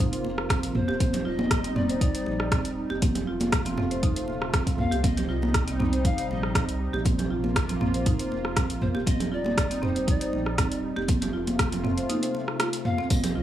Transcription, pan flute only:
0.75 1.22 C5 loud
1.26 1.77 D#5 loud
1.76 2.01 D5 loud
2.01 2.73 D5 medium
4.79 5.05 F5 loud
5.04 5.28 D#5 loud
5.28 5.75 D#5 medium
6.05 6.28 F5 loud
6.30 6.77 D#5 loud
8.82 8.88 C5 medium
9.07 9.33 D#5 loud
9.32 9.82 D5 loud
9.83 10.06 C5 medium
10.08 10.80 D5 medium
12.85 13.12 F5 loud
13.10 13.35 D#5 loud
13.36 13.43 D#5 loud

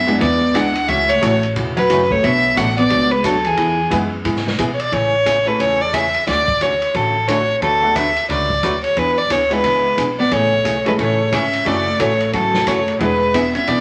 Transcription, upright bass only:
0.00 0.20 F#2 loud
0.21 0.54 E2 medium
0.55 0.87 D2 medium
0.88 1.21 C#2 medium
1.22 1.55 A1 loud
1.56 1.89 E1 medium
1.90 2.22 F#1 medium
2.23 2.56 B1 loud
2.57 2.89 A1 loud
2.90 3.23 C#2 medium
3.24 3.57 D2 medium
3.57 3.90 E2 medium
3.91 4.24 F#2 medium
4.25 4.57 G#2 medium
4.59 4.91 B2 medium
4.92 5.46 A1 medium
5.60 6.14 E2 medium
6.27 6.81 D2 loud
6.95 7.48 A1 medium
7.62 8.16 D2 medium
8.29 8.58 C#2 medium
8.63 8.92 D2 medium
8.96 9.23 E2 medium
9.30 9.59 D2 medium
9.64 9.93 C#2 medium
9.98 10.26 B1 medium
10.31 10.58 A1 medium
10.65 10.94 B1 medium
10.99 11.27 A1 medium
11.32 11.61 G#1 medium
11.66 11.93 F#1 loud
12.00 12.28 A1 medium
12.33 12.62 G#1 medium
12.67 12.95 F#1 medium
13.00 13.54 E1 loud
13.67 13.80 B1 medium

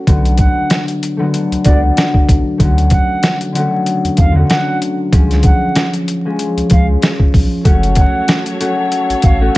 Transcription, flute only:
0.38 0.85 F#5 medium
1.64 1.80 D5 medium
2.91 3.38 F#5 medium
4.18 4.34 F5 medium
4.50 4.78 F#5 medium
5.44 5.90 F#5 medium
6.72 6.87 F5 medium
7.97 8.43 F#5 medium
9.23 9.39 F5 medium
9.54 9.58 F#5 medium

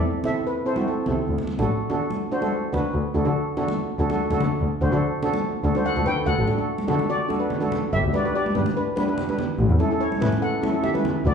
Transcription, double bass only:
1.08 1.16 C2 medium
1.28 1.36 D2 loud
1.59 1.67 A1 medium
2.74 2.82 D2 medium
2.94 3.02 D2 medium
3.15 3.23 D2 loud
3.26 3.34 D3 medium
3.99 4.07 D2 loud
4.31 4.39 D2 medium
4.40 4.48 D3 medium
4.60 4.68 D2 loud
4.81 4.89 D2 loud
4.92 5.00 D3 medium
5.64 5.72 D2 loud
5.96 6.04 D2 medium
6.06 6.14 D3 medium
6.27 6.35 D2 loud
6.37 6.45 A1 medium
6.89 6.97 D3 medium
7.93 8.01 G1 loud
8.04 8.12 D2 medium
8.56 8.64 G2 medium
9.59 9.67 A1 loud
9.70 9.78 E2 medium
10.21 10.29 A2 medium
11.25 11.33 D2 loud

